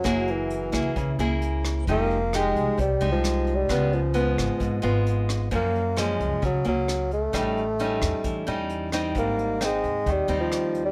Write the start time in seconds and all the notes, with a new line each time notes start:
Already playing: F#3
0.04 F#1 F#3 A#3 E4 G#4, kick, cross-stick, closed hi-hat
0.27 E3, closed hi-hat
0.50 closed hi-hat
0.72 C#2 A#3 E4 G#4, kick, cross-stick
0.96 C#2 C#3, kick, closed hi-hat
1.19 C#2 A#3 E4 G#4, closed hi-hat
1.42 closed hi-hat
1.65 cross-stick, closed hi-hat
1.87 F1 F3 G#3 A#3 D#4 G4, kick, closed hi-hat
2.11 closed hi-hat
2.33 G#3 D#4 G4, cross-stick, closed hi-hat
2.56 C2, closed hi-hat
2.78 C2 C3 G3, kick, closed hi-hat
3.01 C2 G#3 D#4 G4, closed hi-hat
3.12 F3
3.24 cross-stick, closed hi-hat
3.47 closed hi-hat
3.56 G3
3.69 C#2 C#3 G#3 B3 F4, kick, cross-stick, closed hi-hat
3.92 F3, closed hi-hat
4.14 G#3 B3 F4, closed hi-hat
4.38 G#1, cross-stick, closed hi-hat
4.60 G#1 G#2, kick, closed hi-hat
4.82 G#1 G#3 B3 F4, closed hi-hat
5.07 closed hi-hat
5.29 cross-stick, closed hi-hat
5.51 F#2 F3 A#3 C#4, kick, closed hi-hat
5.75 closed hi-hat
5.97 F3 G#3 A#3 C#4, cross-stick, closed hi-hat
6.20 C#2, closed hi-hat
6.42 C#2 C#3 F#3, kick, closed hi-hat
6.65 C#2 F#3 A#3 C#4, closed hi-hat
6.88 cross-stick, closed hi-hat
7.11 A3, closed hi-hat
7.33 A1 A2 G3 C#4 D#4, kick, cross-stick, closed hi-hat
7.57 closed hi-hat
7.79 G3 C#4 D#4, closed hi-hat
8.02 E2, kick, cross-stick
8.24 E2 E3, kick, closed hi-hat
8.47 E2 G3 C#4 D#4, closed hi-hat
8.70 closed hi-hat
8.92 G3 C4 D#4, cross-stick, closed hi-hat
9.15 G#1 G#2 A#3, kick, closed hi-hat
9.39 closed hi-hat
9.61 C4 D#4, cross-stick, closed hi-hat
9.65 G#3
9.84 D#2, closed hi-hat
10.06 D#2 D#3, kick, closed hi-hat
10.11 G3
10.28 D#2 G3 C4 D#4, closed hi-hat
10.40 F3
10.52 cross-stick, closed hi-hat
10.74 closed hi-hat
10.85 G3